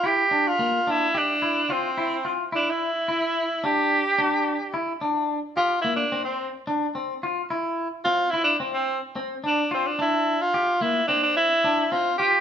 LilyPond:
<<
  \new Staff \with { instrumentName = "Tenor saxophone" } { \time 9/8 \key g \dorian \tempo 4. = 72 g'8. f'8. e'8 d'4 c'4 r8 | d'16 e'4.~ e'16 g'2 r8 | r4 f'8 e'16 d'8 c'8 r4. r16 | r4 f'8 e'16 d'8 c'8 r8. d'8 c'16 d'16 |
e'8. f'8. e'8 d'16 d'16 e'4 f'8 g'8 | }
  \new Staff \with { instrumentName = "Clean electric guitar" } { \time 9/8 \key g \dorian e'8 d'8 bes8 d'8 g'8 e'8 f'8 e'8 f'8 | e'4 e'4 d'4 d'4 e'8 | d'4 g'8 bes8 c'4 d'8 c'8 f'8 | e'4 c'8 e'8 c'4 c'8 d'8 f'8 |
d'4 g'8 bes8 c'4 d'8 c'8 f'8 | }
>>